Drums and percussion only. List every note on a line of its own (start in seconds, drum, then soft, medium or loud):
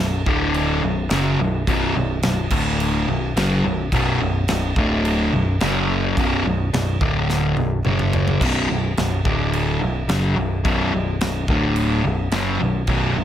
0.26 kick loud
0.54 crash medium
1.10 snare loud
1.10 crash medium
1.67 kick loud
1.67 crash medium
2.23 snare loud
2.23 crash medium
2.50 kick loud
2.50 crash loud
2.80 crash medium
3.37 snare loud
3.37 crash medium
3.92 kick loud
3.92 crash medium
4.48 snare loud
4.48 crash medium
4.76 kick loud
5.05 crash medium
5.60 snare loud
5.60 crash medium
6.17 kick loud
6.17 crash medium
6.74 snare loud
6.74 crash medium
7.01 kick loud
7.30 snare medium
7.57 high tom medium
7.85 mid tom medium
7.99 mid tom medium
8.13 floor tom loud
8.28 floor tom medium
8.41 kick loud
8.41 crash loud
8.41 crash medium
8.97 snare loud
8.97 crash medium
9.25 kick loud
9.53 crash medium
10.09 snare loud
10.09 crash medium
10.65 kick loud
10.65 crash medium
11.21 snare loud
11.21 crash medium
11.48 kick loud
11.76 crash medium
12.31 snare loud
12.31 crash medium
12.87 kick loud
12.87 crash medium